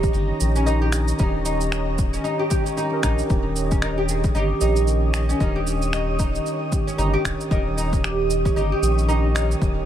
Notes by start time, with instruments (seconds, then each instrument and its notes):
Already playing: tine electric piano D#3 C#4 G4, oud D#4 G4, ambient pad G4 C#5 D#5 A#5
0.03 kick, shaker
0.13 analog synth bass G1, oud D#4, shaker
0.40 analog synth bass A#1, tine electric piano D#3 C#4 G4, shaker
0.56 oud C#4, shaker
0.66 tine electric piano D#3 C#4 G4, oud D#4, shaker
0.82 oud G4
0.92 finger snap, shaker
1.08 shaker
1.18 analog synth bass D#1, tine electric piano D#3 C#4 G4, oud C#4 D#4, kick, shaker
1.45 oud D#4, shaker
1.61 shaker
1.72 finger snap, shaker
1.98 kick, shaker
2.13 oud C#4, shaker
2.24 oud D#4, shaker
2.39 oud G4
2.50 oud G4, kick, shaker
2.66 oud C#4, shaker
2.76 tine electric piano D#3 C#4 G4, oud D#4, shaker
2.91 tine electric piano D#3 C#4 A#4
3.02 analog synth bass A#1, tine electric piano D#3 C#4 G4, oud D#4, finger snap, kick, shaker
3.18 shaker
3.28 analog synth bass D#1, tine electric piano D#3 C#4 G4, ambient pad D#6, kick, shaker
3.56 shaker
3.71 oud C#4, kick, shaker
3.82 oud D#4 A#4, finger snap, shaker
3.98 oud G4
4.09 oud G#4, shaker
4.24 kick, shaker
4.35 analog synth bass G1, oud D#4 G4, shaker
4.60 analog synth bass A#1, tine electric piano D#3 C#4 G4, oud D#4, shaker
4.76 shaker
4.87 tine electric piano D#3 C#4 G4, shaker
5.14 oud D#4, finger snap, shaker
5.29 oud C#4, shaker
5.38 analog synth bass D#1, tine electric piano D#3 C#4 G4, oud C#4 D#4, kick, shaker
5.56 oud G4
5.67 shaker
5.82 shaker
5.93 oud D#4, finger snap, shaker
6.19 oud D#4, kick, shaker
6.35 shaker
6.46 shaker
6.71 tine electric piano D#3 C#4 G4, kick, shaker
6.87 oud C#4, shaker
6.97 analog synth bass G1, tine electric piano D#3 C#4 G4, oud D#4 C#5, shaker
7.14 oud G4
7.25 analog synth bass D#1, finger snap, kick, shaker
7.41 shaker
7.49 analog synth bass D#1, tine electric piano D#3 C#4, oud D#4 A#4, kick, shaker
7.53 tine electric piano G4
7.77 oud D#4, shaker
7.93 kick, shaker
8.04 oud G4, finger snap, shaker
8.30 shaker
8.45 oud C#4, kick, shaker
8.56 analog synth bass G1, oud D#4 G4, shaker
8.72 oud G4
8.82 analog synth bass A#1, tine electric piano D#3 C#4 G4, shaker
8.98 shaker
9.03 oud E4
9.08 tine electric piano D#3 C#4 G4, oud D#4, shaker
9.35 oud C#4 D#4, finger snap, shaker
9.51 shaker
9.59 analog synth bass D#1, tine electric piano D#3 C#4 G4, kick, shaker